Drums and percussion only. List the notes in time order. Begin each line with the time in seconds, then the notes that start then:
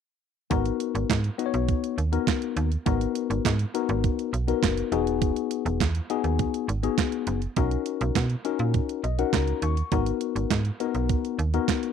0.51 kick, closed hi-hat
0.66 closed hi-hat
0.80 closed hi-hat
0.95 closed hi-hat
1.10 kick, snare, clap, closed hi-hat
1.24 closed hi-hat
1.39 closed hi-hat
1.54 closed hi-hat
1.68 kick, closed hi-hat
1.84 closed hi-hat
1.98 closed hi-hat
2.13 closed hi-hat
2.27 kick, snare, clap, closed hi-hat
2.42 closed hi-hat
2.57 closed hi-hat
2.72 closed hi-hat
2.86 kick, closed hi-hat
3.01 closed hi-hat
3.15 closed hi-hat
3.31 closed hi-hat
3.45 kick, snare, clap, closed hi-hat
3.59 closed hi-hat
3.75 closed hi-hat
3.89 closed hi-hat
4.04 kick, closed hi-hat
4.19 closed hi-hat
4.34 closed hi-hat
4.48 closed hi-hat
4.63 kick, snare, clap, closed hi-hat
4.77 closed hi-hat
4.92 closed hi-hat
5.07 closed hi-hat
5.22 kick, closed hi-hat
5.36 closed hi-hat
5.51 closed hi-hat
5.66 closed hi-hat
5.80 kick, snare, clap, closed hi-hat
5.95 closed hi-hat
6.10 closed hi-hat
6.24 closed hi-hat
6.39 kick, closed hi-hat
6.54 closed hi-hat
6.69 closed hi-hat
6.83 closed hi-hat
6.98 kick, snare, clap, closed hi-hat
7.12 closed hi-hat
7.27 closed hi-hat
7.42 closed hi-hat
7.56 kick, closed hi-hat
7.71 closed hi-hat
7.86 closed hi-hat
8.01 closed hi-hat
8.15 kick, snare, clap, closed hi-hat
8.30 closed hi-hat
8.45 closed hi-hat
8.59 closed hi-hat
8.74 kick, closed hi-hat
8.89 closed hi-hat
9.04 closed hi-hat
9.19 closed hi-hat
9.33 kick, snare, clap, closed hi-hat
9.48 closed hi-hat
9.62 closed hi-hat
9.77 closed hi-hat
9.92 kick, closed hi-hat
10.06 closed hi-hat
10.21 closed hi-hat
10.36 closed hi-hat
10.51 kick, snare, clap, closed hi-hat
10.65 closed hi-hat
10.80 closed hi-hat
10.95 closed hi-hat
11.09 kick, closed hi-hat
11.25 closed hi-hat
11.39 closed hi-hat
11.54 closed hi-hat
11.68 kick, snare, clap, closed hi-hat
11.83 closed hi-hat